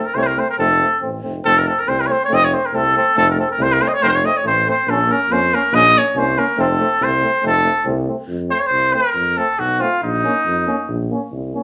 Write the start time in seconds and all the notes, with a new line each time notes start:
0.06 A#4
0.14 C2 A3 C4 C5
0.18 C5 C#5
0.27 A#4
0.36 A3 C4 C5
0.49 A#4
0.58 F1 A3 C4 A4
0.79 A3 C4
1.00 A1 A3 C4
1.22 F1 A3 C4
1.44 F1 A3 C4 A4
1.58 A#4
1.67 A3 C4 A4
1.79 A#4
1.87 C2 A3 C4 C5
2.00 A#4
2.06 A3 C4 C#5
2.12 C5
2.24 C#5
2.29 F1 A3 C4
2.34 D#5
2.45 C#5
2.51 A3 C4 C5
2.66 A#4
2.73 C2 A3 C4 A4
2.95 A3 C4 A4
3.16 F1 A3 C4 A4
3.30 A#4
3.36 A3 C4 A4
3.51 A#4
3.58 C2 A3 C4
3.62 C5
3.73 A#4
3.80 A3 C4 C5
3.88 D#5
3.93 C#5
4.01 F1 A3 C4 A#4 C5
4.09 C5
4.15 C#5
4.23 A3 C4 D#5
4.37 C#5
4.44 A1 A3 C4 C5
4.66 A3 C4
4.70 C5
4.86 A#1 A#3 C#4 A4
5.08 A#3 C#4 A#4
5.29 F2 A#3 C#4 C5
5.52 A#3 C#4 A#4
5.72 A#1 A#3 C#4 D#5
5.95 A#3 C#4 C#5
6.14 C2 A#3 C#4 C5
6.36 A#3 C#4 A#4
6.57 F1 A3 C4 A4
6.79 A3 C4
6.99 C2 A3 C4
7.03 C5
7.21 A3 C4
7.42 F1 A3 C4
7.47 A4
7.64 A3 C4
7.85 C2 A3 C4
8.06 A3 C4
8.28 F2
8.49 A3 C4 C5
8.59 C#5
8.66 C5
8.71 C2
8.93 A3 C4 A#4
9.15 F2
9.37 A3 C4 A4
9.58 B1 F#4
9.79 A3 C4 F4
10.02 A#1 D#4
10.24 A#3 C#4
10.46 F2
10.67 A#3 C#4
10.89 A#1
11.11 A#3 C#4
11.32 C2
11.54 A#3 C#4